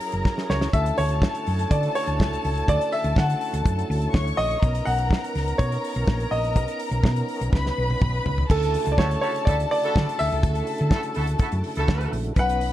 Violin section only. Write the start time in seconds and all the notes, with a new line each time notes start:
Already playing: A#4 A#5
0.73 A4 A5
4.13 C#5 C#6
4.63 A#4 A#5
7.53 B4 B5
8.50 A4 A5
12.36 B4 B5